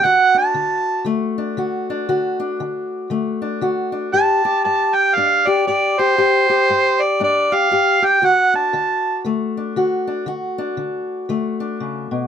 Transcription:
Already playing: steel-string acoustic guitar D4
0.04 steel-string acoustic guitar D3 F#4, harmonica F#5
0.34 steel-string acoustic guitar D4, harmonica A5
0.54 steel-string acoustic guitar D3
1.05 steel-string acoustic guitar D3 A3
1.38 steel-string acoustic guitar D4
1.57 steel-string acoustic guitar D3 F#4
1.90 steel-string acoustic guitar D4
2.09 steel-string acoustic guitar D3 F#4
2.40 steel-string acoustic guitar D4
2.60 steel-string acoustic guitar D3
3.10 steel-string acoustic guitar D3 A3
3.42 steel-string acoustic guitar D4
3.61 steel-string acoustic guitar D3 F#4
3.92 steel-string acoustic guitar D4
4.13 steel-string acoustic guitar G2 G4, harmonica A5
4.45 steel-string acoustic guitar G4
4.65 steel-string acoustic guitar G2, harmonica A5
4.95 harmonica G5
5.15 steel-string acoustic guitar G2 D4, harmonica F5
5.47 steel-string acoustic guitar G4, harmonica D5
5.67 steel-string acoustic guitar G2 G4, harmonica D5
5.99 steel-string acoustic guitar G4, harmonica C5
6.18 steel-string acoustic guitar G2 G4
6.50 steel-string acoustic guitar G4
6.70 steel-string acoustic guitar G2
7.02 harmonica D5
7.20 steel-string acoustic guitar G2 D4, harmonica D5
7.52 steel-string acoustic guitar G4, harmonica F5
7.71 steel-string acoustic guitar G2 G4
8.02 steel-string acoustic guitar G4, harmonica G5
8.22 steel-string acoustic guitar D3 F#4, harmonica F#5
8.54 steel-string acoustic guitar D4, harmonica A5
8.73 steel-string acoustic guitar D3
9.25 steel-string acoustic guitar D3 A3
9.57 steel-string acoustic guitar D4
9.76 steel-string acoustic guitar D3 F#4
10.07 steel-string acoustic guitar D4
10.26 steel-string acoustic guitar D3 F#4
10.58 steel-string acoustic guitar D4
10.77 steel-string acoustic guitar D3
11.29 steel-string acoustic guitar D3 A3
11.60 steel-string acoustic guitar D4
11.80 steel-string acoustic guitar C#3
12.11 steel-string acoustic guitar B2

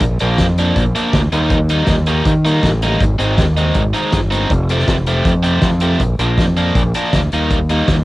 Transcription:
0.01 fingered electric bass A#1, kick
0.19 fingered electric bass A#1, overdriven electric guitar A#2 F3 A#3 D4, closed hi-hat
0.38 fingered electric bass F2, kick, snare, closed hi-hat
0.57 overdriven electric guitar A#2 F3 A#3 D4, closed hi-hat
0.76 fingered electric bass A#1, kick, closed hi-hat
0.95 overdriven electric guitar A#2 F3 A#3 D4, closed hi-hat
1.13 fingered electric bass D2, kick, snare, closed hi-hat
1.32 fingered electric bass D#2, overdriven electric guitar D#3 G3 A#3 D#4, closed hi-hat
1.50 kick, closed hi-hat
1.69 overdriven electric guitar D#3 G3 A#3 D#4, closed hi-hat
1.86 fingered electric bass D#2, kick, snare, closed hi-hat
2.06 overdriven electric guitar D#3 G3 A#3 D#4, closed hi-hat
2.25 fingered electric bass D#3, kick, closed hi-hat
2.45 overdriven electric guitar D#3 G3 A#3 D#4, closed hi-hat
2.63 fingered electric bass A1, kick, snare, closed hi-hat
2.82 overdriven electric guitar D#3 G3 A#3 D#4, closed hi-hat
3.00 fingered electric bass G#1, kick, closed hi-hat
3.18 fingered electric bass G#1, overdriven electric guitar D#3 G#3 C4 D#4, closed hi-hat
3.38 fingered electric bass D#2, kick, snare, closed hi-hat
3.57 overdriven electric guitar D#3 G#3 C4 D#4, closed hi-hat
3.74 fingered electric bass G#1, kick, closed hi-hat
3.94 overdriven electric guitar D#3 G#3 C4 D#4, closed hi-hat
4.12 fingered electric bass G1, kick, snare, closed hi-hat
4.31 overdriven electric guitar D#3 G#3 C4 D#4, closed hi-hat
4.50 fingered electric bass F1, kick, closed hi-hat
4.69 overdriven electric guitar C3 F3 A3 C4, closed hi-hat
4.79 snare
4.88 fingered electric bass F1, kick, snare, closed hi-hat
5.06 overdriven electric guitar C3 F3 A3 C4, closed hi-hat
5.25 fingered electric bass F2, kick, closed hi-hat
5.43 overdriven electric guitar C3 F3 A3 C4, closed hi-hat
5.61 fingered electric bass F2, kick, snare, closed hi-hat
5.80 overdriven electric guitar C3 F3 A3 C4, closed hi-hat
6.00 fingered electric bass A#1, kick, closed hi-hat
6.19 fingered electric bass A#1, overdriven electric guitar A#2 F3 A#3 D4, closed hi-hat
6.38 fingered electric bass F2, kick, snare, closed hi-hat
6.57 overdriven electric guitar A#2 F3 A#3 D4, closed hi-hat
6.75 fingered electric bass A#1, kick, closed hi-hat
6.94 overdriven electric guitar A#2 F3 A#3 D4, closed hi-hat
7.13 fingered electric bass D2, kick, snare, closed hi-hat
7.32 fingered electric bass D#2, overdriven electric guitar D#3 G3 A#3 D#4, closed hi-hat
7.50 kick, closed hi-hat
7.69 overdriven electric guitar D#3 G3 A#3 D#4, closed hi-hat
7.88 fingered electric bass D#2, kick, snare, closed hi-hat

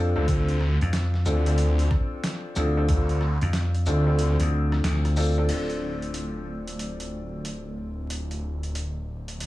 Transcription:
Already playing: slap bass F2, grand piano C4 D4 F4 A4
0.16 detuned saw bass D2, grand piano C4 D4 F4 A4
0.27 detuned saw bass D2, grand piano C4 D4 F4 A4, kick, closed hi-hat
0.49 closed hi-hat
0.60 cross-stick
0.81 slap bass F2, closed hi-hat
0.93 snare, closed hi-hat
1.14 snare
1.25 detuned saw bass D2, grand piano C4 D4 F4 A4, shaker
1.46 grand piano C4 D4 F4 A4, closed hi-hat
1.58 closed hi-hat
1.79 closed hi-hat
1.91 kick, cross-stick
2.24 snare, closed hi-hat
2.56 slap bass D2, grand piano C4 D4 F4 A4, shaker
2.77 grand piano C4 D4 F4 A4
2.88 detuned saw bass D2, grand piano C4 D4 F4 A4, kick, closed hi-hat
3.09 closed hi-hat
3.21 cross-stick
3.41 slap bass F2, closed hi-hat
3.53 snare, closed hi-hat
3.75 closed hi-hat
3.86 detuned saw bass D2, grand piano C4 D4 F4 A4, shaker
4.07 grand piano C4 D4 F4 A4
4.19 closed hi-hat
4.40 slap bass D2, closed hi-hat
4.72 cross-stick, snare
4.84 slap bass D2, snare, closed hi-hat
5.05 cross-stick, closed hi-hat
5.16 grand piano C4 D4 F4 A4, shaker
5.20 shaker
5.22 shaker
5.25 shaker
5.31 shaker
5.34 grand piano C4 D4 F4 A4, shaker
5.49 detuned saw bass D1, grand piano C4 D4 F4 A4, closed hi-hat, crash
5.70 closed hi-hat
6.02 closed hi-hat
6.14 closed hi-hat
6.67 closed hi-hat
6.79 closed hi-hat
7.00 closed hi-hat
7.45 closed hi-hat
8.10 closed hi-hat
8.31 closed hi-hat
8.63 closed hi-hat
8.75 closed hi-hat
9.28 closed hi-hat
9.40 closed hi-hat

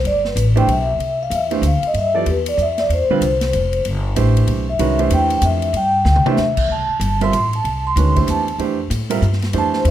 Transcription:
0.04 upright bass G1, vibraphone D5, ride
0.25 vibraphone B4, snare
0.36 upright bass A1, hi-hat pedal, ride
0.55 grand piano E3 A3 D4 G4 C5, vibraphone G5, ride
0.67 upright bass B1, ride
0.72 vibraphone E5
0.98 upright bass C2, ride
1.23 vibraphone F5
1.30 upright bass E2, hi-hat pedal, ride
1.35 vibraphone E5
1.51 grand piano E3 A3 D4 G4 C5, ride
1.62 upright bass D2, hi-hat pedal, ride
1.67 vibraphone F5
1.82 muted upright bass stroke, ride
1.87 vibraphone D#5
1.94 upright bass G2, ride
1.98 vibraphone E5
2.14 grand piano F3 B3 E4 A4 D5, vibraphone G4
2.26 upright bass E2, ride
2.30 vibraphone B4
2.46 vibraphone D5, ride
2.57 upright bass F2, hi-hat pedal
2.62 vibraphone E5
2.78 vibraphone D5, snare, ride
2.89 upright bass E2, ride
2.93 vibraphone C5
3.09 grand piano D3 G3 C4 F4 B4, muted upright bass stroke
3.21 upright bass C2, hi-hat pedal, ride
3.41 snare, ride
3.53 upright bass F1, hi-hat pedal, ride
3.73 ride
3.85 upright bass G1, ride
4.16 upright bass A1, grand piano E3 A3 D4 G4 C5, hi-hat pedal, ride
4.37 ride
4.47 upright bass B1, ride
4.69 vibraphone E5
4.79 upright bass C2, grand piano D#3 G#3 C#4 F#4 B4, ride
4.99 grand piano E3 A3 D4 G4 C5, ride
5.10 upright bass E2, vibraphone G5, hi-hat pedal, ride
5.30 ride
5.42 upright bass F2, vibraphone E5, hi-hat pedal, ride
5.62 ride
5.73 upright bass G2, vibraphone G5, ride
6.05 upright bass D2, snare
6.16 mid tom
6.26 grand piano E3 A3 D4 G4 C5, vibraphone E5, mid tom
6.37 upright bass E2, snare, hi-hat pedal
6.57 kick, crash
6.68 upright bass C2, vibraphone A5
6.88 muted upright bass stroke
7.00 upright bass G1, hi-hat pedal, ride
7.21 grand piano G3 C4 F4 A#4 E5, vibraphone C6, ride
7.32 upright bass A1, hi-hat pedal, ride
7.53 vibraphone A5, ride
7.64 upright bass C2, ride
7.87 vibraphone C6
7.96 upright bass D2, grand piano D#3 G#3 C#4 F#4 B4, hi-hat pedal, ride
8.16 grand piano E3 A3 D4 G4 C5, kick, ride
8.27 upright bass E2, vibraphone A5, hi-hat pedal, ride
8.48 ride
8.58 upright bass F2, grand piano E3 A3 D4 G4 C5, ride
8.90 upright bass A2, hi-hat pedal, ride
9.10 grand piano G3 C4 F4 A#4 E5, ride
9.22 upright bass G2, hi-hat pedal
9.33 snare
9.42 snare, ride
9.53 upright bass F2, grand piano E3 A3 D4 G4 C5, ride
9.58 vibraphone A5
9.73 vibraphone C5, snare
9.85 upright bass E2, ride

